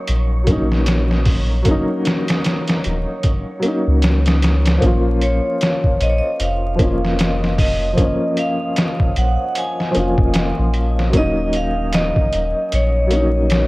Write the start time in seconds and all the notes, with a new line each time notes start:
Already playing: F#3 A#3 C#4 D#4 C#5
0.08 A#1, closed hi-hat
0.44 F#3 A#3, kick, closed hi-hat
0.50 C#4 D#4
0.72 snare
0.86 snare, closed hi-hat
1.11 snare
1.26 kick, open hi-hat
1.62 F#3 A#3, kick, closed hi-hat
1.68 C#4 D#4
2.05 snare, closed hi-hat
2.28 snare, closed hi-hat
2.44 snare, closed hi-hat
2.67 snare, closed hi-hat
2.84 D#1, closed hi-hat
3.23 kick, closed hi-hat
3.59 F#3 A#3, closed hi-hat
3.65 C#4 D#4
3.88 C#2
4.02 snare, closed hi-hat
4.26 snare, closed hi-hat
4.42 snare, closed hi-hat
4.66 snare, closed hi-hat
4.78 F3 A#3
4.82 A#1 C#4 D#5, kick, closed hi-hat
4.86 F4
5.22 C#5, closed hi-hat
5.61 snare, closed hi-hat
5.84 kick
6.01 A#1 D#5, closed hi-hat
6.10 C#5
6.19 D#5
6.40 F1 F5, closed hi-hat
6.76 F3 A#3, kick, closed hi-hat
6.81 C#4 F4
7.05 snare
7.19 snare, closed hi-hat
7.44 snare
7.58 D#5, kick, open hi-hat
7.93 F3 A#3
7.98 C#4, kick, closed hi-hat
8.37 F5, closed hi-hat
8.76 snare, closed hi-hat
8.99 kick
9.16 A#1 F#5, closed hi-hat
9.55 G#5, closed hi-hat
9.80 snare
9.91 F3 A#3, closed hi-hat
9.96 F1 C#4 F4
10.18 F1, kick
10.34 snare, closed hi-hat
10.59 A#1
10.74 closed hi-hat
10.99 snare
11.10 F#3 A#3, kick, closed hi-hat
11.14 D#1 C#4 D#5
11.18 D#4
11.53 F5, closed hi-hat
11.92 D#5, snare, closed hi-hat
12.16 kick
12.32 D#1, closed hi-hat
12.72 A#1 C#5, closed hi-hat
13.07 F#3 A#3, closed hi-hat
13.13 C#4 D#4
13.50 snare, closed hi-hat